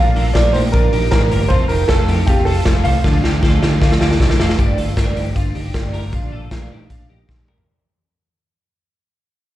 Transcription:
Already playing: A#1 A#2 F3 A#3 D4 F4 A#4 F5
0.00 D4
0.15 A#1 F3 A#3 D4 F4 A4 A#4, open hi-hat
0.34 A#1 A#2 F3 A#3 D4 F4 A#4 D5, kick, snare, closed hi-hat
0.53 A#2 F3 A#3 D4 D#4 F4 G4 A#4 C5, open hi-hat
0.72 A#1 A#2 F3 A#3 D4 F4 A#4, kick, closed hi-hat
0.91 A#1 F3 A#3 D4 D#4 F4 G4 A#4, open hi-hat
1.11 A1 A#2 F3 A#3 D4 F4 A#4, kick, snare, closed hi-hat
1.30 G1 F3 A#3 D4 F4 G4 A#4, open hi-hat
1.48 F1 F2 C3 F3 A3 C4 F4 A4 C5, kick, closed hi-hat
1.53 C4
1.68 F1 A3 C4 D#4 F4 G4 A#4, open hi-hat
1.73 F3
1.88 F1 F3 A3 C4 F4 A4, kick, snare, closed hi-hat
1.92 C4
2.07 F2 F3 A3 C4 D#4 F4 G4 A4, open hi-hat
2.27 F1 F2 C3 F3 A3 C4 F4 G4 A4, kick, closed hi-hat
2.45 F1 F3 A3 C4 F4 A4, open hi-hat
2.65 F1 C3 F3 A3 C4 F4 A4, kick, snare, closed hi-hat
2.84 C2 F3 A3 C4 F4 A4 C5 F5, open hi-hat
3.04 D2 D3 F3 A3 D4 F4 A4, kick, snare
3.23 D2 F3 A3 D4 D#4 F4 G4 A4, snare
3.42 D2 D3 F3 A3 D4 F4 A4 C5, kick, snare
3.62 D3 F3 A3 D4 D#4 F4 G4 A4, snare
3.81 D2 D3 F3 A3 D4 F4 A4, kick, snare
3.92 snare
4.00 D2 F3 A3 D4 D#4 F4 G4 A4, snare
4.11 snare
4.19 C2 D3 F3 A3 D4 F4 A4, kick, snare
4.30 snare
4.39 F1 F3 A3 D4 F4 A4, snare
4.49 snare
4.58 G1 G2 D3 G3 A#3 D4 G4 A4, kick, closed hi-hat
4.77 G1 G3 A#3 D4 F4 A4, open hi-hat
4.97 G1 G2 D3 G3 A#3 D4 G4 A4 A#4, kick, snare, closed hi-hat
5.15 G1 G3 A#3 D4 D#4 G4 A4, open hi-hat
5.34 G1 G3 A#3 D4 F4 A4, kick, closed hi-hat
5.54 G1 G3 A#3 D4 D#4 G4 A4, open hi-hat
5.73 G1 G2 D3 G3 A#3 D4 A4, kick, snare, closed hi-hat
5.93 G1 G3 A#3 D4 G4 A4 A#4, open hi-hat
6.12 A#1 A#2 D3 F3 A#3 D4 F4 A#4, kick, closed hi-hat
6.31 A#1 F3 A#3 D4 F4 A4 A#4
6.50 A#1 A#2 D3 F3 A#3 D4 F4 A#4, kick, snare, closed hi-hat
6.70 F3 A#3 D4 D#4 G4 A#4
6.89 A#1 F3 A#3 D4 F4 A#4, kick, closed hi-hat
7.09 A#1 F3 A#3 D4 D#4 G4 A#4
7.28 A#1 A#2 D3 F3 A#3 D4 A#4, kick, snare
7.47 A#1 A#3 D4 G4 A#4, mid tom
7.58 floor tom

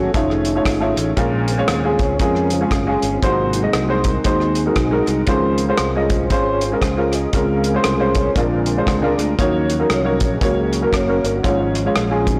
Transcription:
Already playing: F#3 A3 C#4 F#4 A4
0.14 F1 D#3 A3 C#4 D#4 F4 G#4 C#5, kick, closed hi-hat
0.30 cross-stick
0.45 F4 G#4, closed hi-hat
0.49 A3
0.55 A3 D#4 F4 C#5
0.65 G#1, kick, cross-stick, closed hi-hat
0.80 A3 D#4 F4 C#5
0.96 A1, cross-stick, closed hi-hat
1.17 A#1 A#2 G#3 A#3 C#4 F4 A#4, kick, closed hi-hat
1.48 C#3 G#3 C4, closed hi-hat
1.58 G#3 C#4 F4 C#5
1.68 D#2, cross-stick, closed hi-hat
1.84 G#3 C#4 F4 G#4
1.99 C#2 C#5, kick, closed hi-hat
2.19 F2 G#3 C#4 F4 G#4 A#4, kick, closed hi-hat
2.35 cross-stick
2.50 C#3 G#3 C4 C#4 F4 G#4, closed hi-hat
2.61 G#3 C#4 F4 G#4
2.71 F#1, kick, cross-stick, closed hi-hat
2.87 G#3 C#4 F4 G#4
3.02 G1 G#4, closed hi-hat
3.14 C4 F4
3.22 G#1 G#2 C3 F#3 G#3 A#3 C4 D#4 F#4 C5, kick, closed hi-hat
3.53 C4 D#4 F#4, closed hi-hat
3.62 G#3 D#4 F#4 D#5
3.73 C2, cross-stick, closed hi-hat
3.88 G#3 D#4 F#4 C5
4.04 A#4, kick, closed hi-hat
4.24 D#2 G#3 C4 D#4 F#4 G#4 C5, kick, closed hi-hat
4.40 cross-stick
4.55 closed hi-hat
4.66 G#3 D#4 F#4 A#4
4.76 B1, kick, cross-stick, closed hi-hat
4.91 G#3 D#4 F#4 A#4
5.06 C2, cross-stick, closed hi-hat
5.27 C#2 C#3 D#3 F3 G#3 C4 C#4 F4 A#4 C5, kick, closed hi-hat
5.58 closed hi-hat
5.68 G#3 C#4 F4 C5
5.77 C2, cross-stick, closed hi-hat
5.96 G#3 C#4 F4 D#5
6.10 C5, kick, closed hi-hat
6.30 G#1 G#3 C#4 F4 G#4 C5 C#5, kick, closed hi-hat
6.61 F4 G#4 C5, closed hi-hat
6.72 G#3 C#4 F4 A#4
6.82 C#2, kick, cross-stick, closed hi-hat
6.97 G#3 C#4 F4 A#4
7.12 D#5, cross-stick, closed hi-hat
7.33 C#2 C#3 G#3 A#3 C4 C#4 F4 G#4 A#4 F5, kick, closed hi-hat
7.64 closed hi-hat
7.74 G#3 C#4 F4 C5
7.84 C2, cross-stick, closed hi-hat
8.00 G#3 C#4 F4 C5
8.15 C#5, kick, closed hi-hat
8.36 A#1 A#2 D3 G#3 C4 D4 F4 A#4, kick, closed hi-hat
8.66 closed hi-hat
8.77 G#3 D4 F4 C5
8.87 C#2, kick, cross-stick, closed hi-hat
9.02 G#3 D4 F4 A#4
9.18 D2, cross-stick, closed hi-hat
9.38 D#2 D#3 F3 F#3 A#3 C#4 D#4 F#4 C#5, kick, closed hi-hat
9.70 closed hi-hat
9.80 A#3 D#4 F#4 A#4
9.90 C2, cross-stick, closed hi-hat
9.94 C#5
10.04 A#3 D#4 F#4 C#5
10.09 A#4
10.20 A#1, kick, closed hi-hat
10.34 G#4
10.41 C#2 C#3 F#3 A#3 C#4 F#4 C#5, kick, closed hi-hat
10.60 G#4
10.73 closed hi-hat
10.82 A#3 C#4 F#4 A#4
10.93 F#1 C#5, kick, cross-stick, closed hi-hat
11.08 A#3 C#4 F#4 A#4
11.24 G1 A#4, closed hi-hat
11.36 F#4
11.43 G#1 G#2 F3 G#3 C#4 F4 C#5, kick, closed hi-hat
11.75 closed hi-hat
11.86 G#3 C#4 F4 C#5
11.96 A#1, cross-stick, closed hi-hat
12.11 G#3 C#4 F4 G#4
12.19 F4
12.27 C4 D#4 F#4, kick, closed hi-hat

